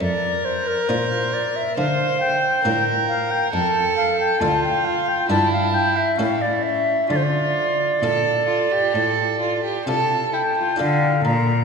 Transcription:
0.00 0.85 F2 soft
0.00 0.86 F2 medium
0.00 1.74 A#4 medium
0.00 0.46 D5 medium
0.45 0.69 C5 medium
0.67 0.90 A#4 medium
0.89 1.74 A#2 soft
0.89 1.53 D4 soft
0.89 1.53 F4 soft
0.89 1.54 A#4 soft
0.89 1.35 C5 medium
1.33 1.58 D5 medium
1.56 1.76 E5 medium
1.77 2.62 D3 soft
1.77 2.62 D3 medium
1.77 2.63 A#3 soft
1.77 2.64 C5 medium
1.77 2.20 F5 medium
2.21 2.84 G5 medium
2.65 3.50 A2 medium
2.65 3.29 D4 soft
2.65 3.29 F4 soft
2.65 3.52 A#4 medium
2.65 3.30 A#4 soft
3.08 3.32 F5 medium
3.31 3.52 G5 medium
3.53 4.38 F2 soft
3.53 4.38 F2 medium
3.53 4.40 A4 medium
3.53 3.96 A5 medium
3.97 4.19 F5 medium
4.20 4.42 G5 medium
4.40 5.26 D2 medium
4.40 5.05 D4 soft
4.40 5.28 F4 medium
4.40 5.05 F4 soft
4.40 5.06 A4 soft
4.40 4.63 A5 medium
4.64 4.87 G5 medium
4.85 5.10 F5 medium
5.08 5.29 G5 medium
5.29 6.15 G2 medium
5.29 6.15 D4 soft
5.29 6.17 E4 medium
5.29 6.15 E4 soft
5.29 6.16 A#4 soft
5.29 5.51 A5 medium
5.52 5.72 F5 medium
5.73 5.98 G5 medium
5.96 6.19 E5 medium
6.18 7.06 A2 medium
6.18 7.07 A2 soft
6.18 7.08 C#4 medium
6.18 7.06 C#4 soft
6.18 7.07 E4 soft
6.18 7.07 A4 soft
6.18 6.43 F5 medium
6.42 6.64 D5 medium
6.63 7.09 E5 medium
7.09 7.99 D3 medium
7.09 7.99 D3 soft
7.09 7.91 F4 medium
7.09 7.18 D5 medium
7.16 7.25 C5 medium
7.23 9.61 D5 medium
8.01 8.91 A#2 soft
8.01 8.69 D4 soft
8.01 8.70 F4 soft
8.01 8.45 A4 medium
8.01 8.70 A4 soft
8.47 8.74 F4 medium
8.72 8.95 G4 medium
8.94 9.83 A2 medium
8.94 9.83 A2 soft
8.94 9.40 A4 medium
9.41 9.63 F4 medium
9.64 9.85 G4 medium
9.86 10.76 C3 medium
9.86 10.76 C3 soft
9.86 10.54 D4 soft
9.86 10.55 F4 soft
9.86 10.32 A4 medium
9.86 10.55 A4 soft
9.86 10.35 A5 medium
10.33 10.41 E4 soft
10.33 10.78 G5 medium
10.58 10.80 F4 soft
10.76 11.22 D3 medium
10.76 11.64 D4 soft
10.76 11.64 F4 soft
10.76 11.64 A4 soft
10.76 11.24 F5 medium
10.80 11.21 D3 medium
11.24 11.64 A#2 medium
11.24 11.64 A#5 medium

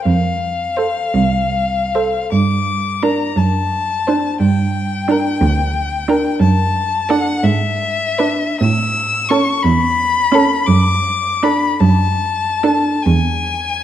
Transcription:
0.05 0.94 F2 medium
0.05 2.29 F5 medium
0.77 1.05 A4 soft
0.77 1.04 C5 soft
1.14 2.11 C2 medium
1.95 2.24 A4 soft
1.95 2.24 C5 soft
2.32 3.18 G2 medium
2.32 3.04 D6 medium
3.03 3.28 D4 soft
3.03 3.29 A#4 soft
3.03 3.39 A#5 medium
3.37 4.21 F#2 medium
3.37 4.40 A5 medium
4.07 4.33 D4 soft
4.07 4.32 C5 soft
4.40 5.22 G2 medium
4.40 6.37 G5 medium
5.08 5.33 D4 soft
5.08 5.34 A#4 soft
5.41 6.21 D2 medium
6.08 6.33 D4 medium
6.08 6.33 A#4 medium
6.40 7.24 F#2 medium
6.40 7.11 A5 medium
7.09 7.35 D4 medium
7.09 7.34 A4 medium
7.09 7.45 F#5 medium
7.44 8.38 G#2 medium
7.44 8.60 E5 medium
8.19 8.49 D4 medium
8.19 8.49 B4 medium
8.61 9.46 A2 medium
8.61 9.30 E6 medium
9.29 9.55 C#4 medium
9.29 9.56 A4 medium
9.29 9.63 C#6 medium
9.62 10.48 E2 medium
9.62 10.67 B5 medium
10.32 10.58 C#4 medium
10.32 10.60 A4 medium
10.66 11.60 F#2 medium
10.66 11.45 D6 medium
11.43 11.72 D4 medium
11.43 11.72 A4 soft
11.43 11.81 B5 medium
11.80 12.82 F#2 medium
11.80 13.04 A5 medium
12.63 12.95 D4 medium
12.63 12.95 A4 medium
13.03 13.84 E2 medium
13.03 13.84 G#5 medium

